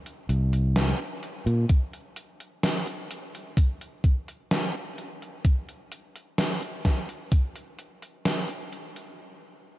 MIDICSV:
0, 0, Header, 1, 3, 480
1, 0, Start_track
1, 0, Tempo, 937500
1, 866, Time_signature, 4, 2, 24, 8
1, 5011, End_track
2, 0, Start_track
2, 0, Title_t, "Fingered electric bass"
2, 0, Program_c, 0, 33
2, 148, Note_on_c, 0, 36, 78
2, 469, Note_off_c, 0, 36, 0
2, 749, Note_on_c, 0, 46, 79
2, 842, Note_off_c, 0, 46, 0
2, 5011, End_track
3, 0, Start_track
3, 0, Title_t, "Drums"
3, 32, Note_on_c, 9, 42, 41
3, 83, Note_off_c, 9, 42, 0
3, 150, Note_on_c, 9, 42, 68
3, 202, Note_off_c, 9, 42, 0
3, 272, Note_on_c, 9, 42, 41
3, 323, Note_off_c, 9, 42, 0
3, 389, Note_on_c, 9, 38, 127
3, 389, Note_on_c, 9, 42, 98
3, 440, Note_off_c, 9, 38, 0
3, 440, Note_off_c, 9, 42, 0
3, 629, Note_on_c, 9, 42, 41
3, 681, Note_off_c, 9, 42, 0
3, 752, Note_on_c, 9, 42, 42
3, 803, Note_off_c, 9, 42, 0
3, 868, Note_on_c, 9, 42, 85
3, 869, Note_on_c, 9, 36, 125
3, 919, Note_off_c, 9, 42, 0
3, 920, Note_off_c, 9, 36, 0
3, 991, Note_on_c, 9, 42, 41
3, 1042, Note_off_c, 9, 42, 0
3, 1108, Note_on_c, 9, 42, 62
3, 1160, Note_off_c, 9, 42, 0
3, 1232, Note_on_c, 9, 42, 38
3, 1283, Note_off_c, 9, 42, 0
3, 1350, Note_on_c, 9, 38, 117
3, 1350, Note_on_c, 9, 42, 88
3, 1401, Note_off_c, 9, 38, 0
3, 1401, Note_off_c, 9, 42, 0
3, 1472, Note_on_c, 9, 42, 41
3, 1523, Note_off_c, 9, 42, 0
3, 1591, Note_on_c, 9, 42, 70
3, 1642, Note_off_c, 9, 42, 0
3, 1714, Note_on_c, 9, 42, 38
3, 1765, Note_off_c, 9, 42, 0
3, 1828, Note_on_c, 9, 36, 124
3, 1831, Note_on_c, 9, 42, 94
3, 1879, Note_off_c, 9, 36, 0
3, 1883, Note_off_c, 9, 42, 0
3, 1952, Note_on_c, 9, 42, 40
3, 2003, Note_off_c, 9, 42, 0
3, 2068, Note_on_c, 9, 36, 107
3, 2070, Note_on_c, 9, 42, 63
3, 2119, Note_off_c, 9, 36, 0
3, 2121, Note_off_c, 9, 42, 0
3, 2192, Note_on_c, 9, 42, 39
3, 2243, Note_off_c, 9, 42, 0
3, 2309, Note_on_c, 9, 38, 125
3, 2309, Note_on_c, 9, 42, 96
3, 2360, Note_off_c, 9, 38, 0
3, 2360, Note_off_c, 9, 42, 0
3, 2549, Note_on_c, 9, 42, 39
3, 2600, Note_off_c, 9, 42, 0
3, 2673, Note_on_c, 9, 42, 38
3, 2724, Note_off_c, 9, 42, 0
3, 2787, Note_on_c, 9, 36, 117
3, 2788, Note_on_c, 9, 42, 82
3, 2839, Note_off_c, 9, 36, 0
3, 2839, Note_off_c, 9, 42, 0
3, 2910, Note_on_c, 9, 42, 36
3, 2961, Note_off_c, 9, 42, 0
3, 3028, Note_on_c, 9, 42, 66
3, 3079, Note_off_c, 9, 42, 0
3, 3151, Note_on_c, 9, 42, 38
3, 3202, Note_off_c, 9, 42, 0
3, 3267, Note_on_c, 9, 38, 120
3, 3267, Note_on_c, 9, 42, 88
3, 3319, Note_off_c, 9, 38, 0
3, 3319, Note_off_c, 9, 42, 0
3, 3391, Note_on_c, 9, 42, 39
3, 3442, Note_off_c, 9, 42, 0
3, 3507, Note_on_c, 9, 36, 59
3, 3507, Note_on_c, 9, 38, 59
3, 3507, Note_on_c, 9, 42, 64
3, 3559, Note_off_c, 9, 36, 0
3, 3559, Note_off_c, 9, 38, 0
3, 3559, Note_off_c, 9, 42, 0
3, 3630, Note_on_c, 9, 42, 36
3, 3681, Note_off_c, 9, 42, 0
3, 3747, Note_on_c, 9, 36, 116
3, 3747, Note_on_c, 9, 42, 93
3, 3798, Note_off_c, 9, 36, 0
3, 3798, Note_off_c, 9, 42, 0
3, 3869, Note_on_c, 9, 42, 41
3, 3920, Note_off_c, 9, 42, 0
3, 3987, Note_on_c, 9, 42, 65
3, 4038, Note_off_c, 9, 42, 0
3, 4108, Note_on_c, 9, 42, 37
3, 4160, Note_off_c, 9, 42, 0
3, 4226, Note_on_c, 9, 38, 122
3, 4226, Note_on_c, 9, 42, 89
3, 4277, Note_off_c, 9, 38, 0
3, 4277, Note_off_c, 9, 42, 0
3, 4349, Note_on_c, 9, 42, 34
3, 4400, Note_off_c, 9, 42, 0
3, 4467, Note_on_c, 9, 42, 35
3, 4518, Note_off_c, 9, 42, 0
3, 4588, Note_on_c, 9, 42, 36
3, 4640, Note_off_c, 9, 42, 0
3, 5011, End_track
0, 0, End_of_file